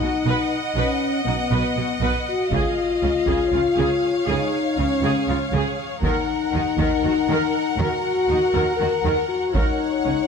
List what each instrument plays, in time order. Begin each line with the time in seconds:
Already playing: french horn section D#4, violin section D#5 F#5
0.01 cello section B2, viola section F#4
0.25 double bass section B1, cello section B2, viola section B4
0.74 double bass section B1, cello section B2, french horn section C#4, viola section B4
1.24 double bass section B1, cello section B2, french horn section B3, viola section D#4
1.51 double bass section B1, cello section B2, viola section B4
1.75 double bass section B1, cello section B2, viola section F#4
2.00 double bass section B1, cello section B2, viola section B4
2.28 french horn section F#4
2.51 double bass section C#2, cello section C#3, french horn section F4, viola section G#4, violin section F5, taiko
3.02 double bass section C#2, cello section C#3, viola section C#4
3.26 double bass section C#2, cello section C#3, viola section G#4, taiko
3.52 double bass section C#2, cello section C#3, viola section F4, violin section C#5
3.76 double bass section C#2, cello section C#3, viola section G#4
4.27 double bass section C#2, cello section C#3, french horn section D#4, viola section G#4
4.77 double bass section C#2, cello section C#3, viola section C#4, french horn section C#4
5.02 double bass section C#2, cello section C#3, viola section G#4
5.27 double bass section C#2, cello section C#3, viola section F4
5.52 double bass section C#2, cello section C#3, viola section G#4
6.02 double bass section D#2, cello section D#3, french horn section D#4, viola section A#4, violin section A#4 F#5, taiko
6.53 double bass section D#2, cello section D#3, viola section D#4
6.78 double bass section D#2, cello section D#3, viola section A#4, taiko
7.03 double bass section D#2, cello section D#3, viola section F#4
7.28 double bass section D#2, cello section D#3, viola section A#4
7.78 double bass section D#2, cello section D#3, french horn section F#4, viola section A#4
8.29 double bass section D#2, cello section D#3, viola section D#4
8.54 double bass section D#2, cello section D#3, viola section A#4
8.77 double bass section D#2, cello section D#3, viola section F#4, french horn section A#4
9.04 double bass section D#2, cello section D#3, viola section A#4
9.28 french horn section F#4
9.54 double bass section C#2, cello section C#3, french horn section D#4, viola section A#4, violin section C#5 F#5, taiko
10.05 double bass section C#2, cello section C#3, viola section C#4